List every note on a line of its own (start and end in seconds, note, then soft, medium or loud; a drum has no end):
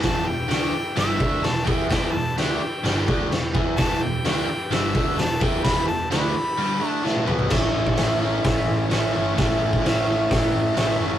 0.01 0.26 E1 loud
0.01 0.25 E2 loud
0.01 0.26 B2 loud
0.01 0.26 E3 loud
0.01 0.28 A5 loud
0.01 kick loud
0.01 snare loud
0.01 crash medium
0.06 3.75 E4 medium
0.06 3.75 G4 medium
0.06 3.76 B4 medium
0.26 0.50 E1 medium
0.26 0.46 E2 medium
0.26 0.46 B2 medium
0.26 0.97 G5 loud
0.48 0.73 D2 medium
0.48 0.72 D3 loud
0.48 0.73 A3 medium
0.48 0.74 D4 loud
0.48 snare loud
0.48 crash medium
0.73 muted overdriven electric guitar stroke medium
0.73 muted picked electric bass stroke soft
0.95 1.19 G1 medium
0.95 1.19 G2 medium
0.95 1.17 D3 loud
0.95 1.19 G3 loud
0.95 1.47 E5 medium
0.95 snare loud
0.95 crash medium
1.19 1.42 D2 loud
1.19 1.42 D3 medium
1.19 1.43 A3 medium
1.19 1.44 D4 loud
1.19 kick loud
1.42 1.67 E1 medium
1.42 1.62 E2 medium
1.42 1.62 B2 medium
1.42 1.67 A5 loud
1.42 snare loud
1.42 crash medium
1.65 1.89 E2 loud
1.65 1.89 E3 medium
1.65 1.89 B3 medium
1.65 1.90 E4 loud
1.65 1.88 G5 medium
1.65 kick loud
1.88 2.12 E1 medium
1.88 2.12 E2 medium
1.88 2.13 B2 loud
1.88 2.13 E3 medium
1.88 2.13 G5 loud
1.88 kick loud
1.88 snare loud
1.88 crash medium
2.12 2.36 E1 medium
2.12 2.33 E2 medium
2.12 2.33 B2 medium
2.12 2.37 A5 loud
2.36 2.59 D2 medium
2.36 2.60 D3 medium
2.36 2.61 A3 medium
2.36 2.61 D4 loud
2.36 3.51 G5 medium
2.36 snare loud
2.36 crash medium
2.61 muted picked electric bass stroke soft
2.61 muted overdriven electric guitar stroke medium
2.83 3.06 G1 medium
2.83 3.07 G2 loud
2.83 3.06 D3 loud
2.83 3.08 G3 loud
2.83 snare loud
2.83 crash medium
3.07 3.30 D3 loud
3.07 3.31 A3 medium
3.07 3.31 D4 loud
3.07 kick loud
3.32 3.53 E1 medium
3.32 3.50 E2 medium
3.32 3.51 B2 medium
3.32 snare loud
3.32 crash medium
3.54 3.76 E2 loud
3.54 3.77 E3 medium
3.54 3.78 B3 medium
3.54 3.78 E4 medium
3.54 kick loud
3.76 4.00 E1 loud
3.76 4.00 E2 loud
3.76 4.01 B2 loud
3.76 4.01 E3 medium
3.76 7.48 E4 medium
3.76 7.48 G4 medium
3.76 7.48 B4 medium
3.76 4.04 A5 loud
3.76 kick loud
3.76 snare loud
3.76 crash medium
4.01 4.23 E1 medium
4.01 4.20 E2 medium
4.01 4.20 B2 medium
4.01 4.76 G5 loud
4.24 4.46 D2 medium
4.24 4.47 D3 medium
4.24 4.48 A3 loud
4.24 4.48 D4 loud
4.24 snare loud
4.24 crash medium
4.48 muted picked electric bass stroke soft
4.48 muted overdriven electric guitar stroke medium
4.70 4.92 G1 medium
4.70 4.94 G2 medium
4.70 4.94 D3 loud
4.70 4.95 G3 loud
4.70 snare loud
4.70 crash medium
4.74 5.21 E5 medium
4.95 5.16 D2 loud
4.95 5.18 D3 loud
4.95 5.18 A3 loud
4.95 5.18 D4 loud
4.95 kick loud
5.17 5.39 E1 medium
5.17 5.36 E2 medium
5.17 5.37 B2 medium
5.17 5.43 A5 loud
5.17 snare loud
5.17 crash medium
5.40 5.63 E2 loud
5.40 5.63 E3 medium
5.40 5.64 B3 medium
5.40 5.65 E4 medium
5.40 5.63 G5 medium
5.40 kick loud
5.64 5.87 E1 loud
5.64 5.87 E2 medium
5.64 5.88 B2 loud
5.64 5.89 E3 loud
5.64 5.86 B5 loud
5.64 kick loud
5.64 snare loud
5.64 crash medium
5.88 6.10 E1 medium
5.88 6.07 E2 medium
5.88 6.07 B2 medium
5.88 6.09 A5 loud
6.11 6.33 D2 loud
6.11 6.34 D3 loud
6.11 6.34 A3 loud
6.11 6.35 D4 loud
6.11 6.88 B5 loud
6.11 snare loud
6.11 crash medium
6.35 muted overdriven electric guitar stroke medium
6.35 muted picked electric bass stroke soft
6.57 6.80 G2 medium
6.57 6.78 D3 medium
6.57 6.81 G3 loud
6.80 7.03 D3 medium
6.80 7.04 A3 medium
6.80 7.04 D4 loud
6.88 7.24 A5 loud
7.03 7.25 A2 medium
7.03 7.26 E3 loud
7.03 7.27 A3 loud
7.03 snare medium
7.16 high tom medium
7.26 7.49 B2 medium
7.26 7.50 F#3 medium
7.26 7.50 B3 loud
7.26 mid tom medium
7.39 floor tom loud
7.49 7.71 A1 loud
7.49 8.89 A2 loud
7.49 7.96 E3 medium
7.49 7.98 A3 medium
7.49 7.99 C#4 loud
7.49 11.19 E4 medium
7.49 11.19 A4 medium
7.49 11.19 C#5 medium
7.49 kick loud
7.49 snare loud
7.49 crash loud
7.54 8.01 E4 loud
7.75 7.95 A1 medium
7.87 kick medium
7.96 8.39 A1 medium
7.96 8.90 E3 medium
7.96 8.24 A3 medium
7.96 8.23 C#4 medium
7.96 snare loud
7.96 open hi-hat medium
8.01 8.20 E4 loud
8.20 8.92 C#4 medium
8.20 8.94 E4 medium
8.25 8.91 A3 medium
8.44 8.65 A1 medium
8.44 kick loud
8.44 snare loud
8.44 open hi-hat medium
8.69 8.89 A1 medium
8.89 9.12 A1 medium
8.89 9.34 A2 medium
8.89 9.37 E3 loud
8.89 9.17 A3 loud
8.89 snare loud
8.89 open hi-hat medium
8.94 9.15 C#4 medium
8.94 9.12 E4 loud
9.13 9.35 G1 medium
9.13 9.38 C#4 medium
9.13 9.39 E4 medium
9.18 9.36 A3 medium
9.35 9.58 A1 loud
9.35 10.06 A2 loud
9.35 9.81 E3 loud
9.35 9.82 A3 loud
9.35 9.83 C#4 loud
9.35 kick loud
9.35 snare loud
9.35 open hi-hat medium
9.40 9.86 E4 loud
9.61 9.81 A1 medium
9.73 kick medium
9.82 10.25 A1 loud
9.82 10.75 E3 medium
9.82 10.09 A3 medium
9.82 10.07 C#4 medium
9.86 10.05 E4 medium
9.86 snare loud
9.86 open hi-hat medium
10.06 10.76 C#4 medium
10.06 10.78 E4 medium
10.11 10.75 A3 medium
10.31 10.51 A1 loud
10.31 kick loud
10.31 snare loud
10.31 open hi-hat medium
10.54 10.74 A1 medium
10.74 10.97 A1 medium
10.74 11.19 A2 loud
10.74 11.19 E3 medium
10.74 11.02 A3 loud
10.74 11.00 C#4 loud
10.74 snare loud
10.74 open hi-hat medium
10.79 10.97 E4 loud
10.98 11.19 F#1 medium
10.98 11.19 C#4 medium
10.98 11.19 E4 medium
11.03 11.19 A3 medium